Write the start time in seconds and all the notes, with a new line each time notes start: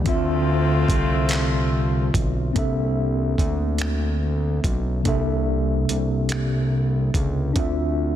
0.04 D2 D3 F3 A3 C4 F4, kick, closed hi-hat
0.09 E5
0.89 C2, kick, closed hi-hat
1.29 clap, closed hi-hat
2.14 B1, kick, closed hi-hat
2.53 C2 A#3 C4 D4 A4, kick, closed hi-hat
2.59 E5
3.38 D2, kick, closed hi-hat
3.78 finger snap, closed hi-hat
4.64 B1, kick, closed hi-hat
5.03 C2 C3 A#3 D4, kick, closed hi-hat
5.07 A4 E5
5.89 C2, closed hi-hat
6.29 finger snap, closed hi-hat
7.14 C#2, kick, closed hi-hat
7.53 D2 C4 D4 F4, kick, closed hi-hat
7.59 E5